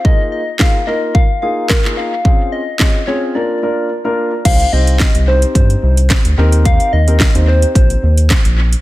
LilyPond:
<<
  \new Staff \with { instrumentName = "Soft synth lead" } { \time 4/4 \key ees \major \tempo 4 = 109 ees''8 ees''8 f''8 ees''8 f''8 f''8 bes'8 f''8~ | f''8 ees''4 des''8 d''4. r8 | f''8 ees''4 c''8 c''4 r4 | f''8 ees''4 c''8 c''4 r4 | }
  \new Staff \with { instrumentName = "Grand piano" } { \time 4/4 \key ees \major <bes ees' f' aes'>8 r8 <bes ees' f' aes'>16 r16 <bes ees' f' bes'>8 r8 <bes ees' f' aes'>8 r16 <bes ees' f' aes'>8 r16 | <c' des' f' aes'>8 r8 <c' des' f' aes'>16 r16 <c' des' f' aes'>8 <bes d' f' bes'>8 <bes d' f' bes'>8 r16 <bes d' f' bes'>8 r16 | <c' ees' g' c''>16 r16 <c' ees' g' c''>8 r8 <c' ees' g' c''>4~ <c' ees' g' c''>16 r8. <c' ees' g' bes'>8~ | <c' ees' g' bes'>8 r16 <c' ees' g' bes'>16 r16 <c' ees' g' c''>4~ <c' ees' g' c''>16 r4. | }
  \new Staff \with { instrumentName = "Analog synth bass" } { \clef bass \time 4/4 \key ees \major r1 | r1 | c,8 c,8. c,8. g,8 c,8. d,16 ees,8~ | ees,8 ees,8. ees,8. bes,,8 ees,8. bes,,8. | }
  \new DrumStaff \with { instrumentName = "Drums" } \drummode { \time 4/4 bd4 <hc bd sn>4 bd4 <hc bd sn>16 hc8. | bd4 <hc bd sn>4 r4 r4 | <cymc hh bd>16 hh8 hh16 <hc hh bd sn>16 hh8 hh16 <hh bd>16 hh8 hh16 <hc hh bd sn>16 hh8 hh16 | <hh bd>16 hh8 hh16 <hc hh bd sn>16 hh8 hh16 <hh bd>16 hh8 hh16 <hc hh bd sn>16 hh8 hh16 | }
>>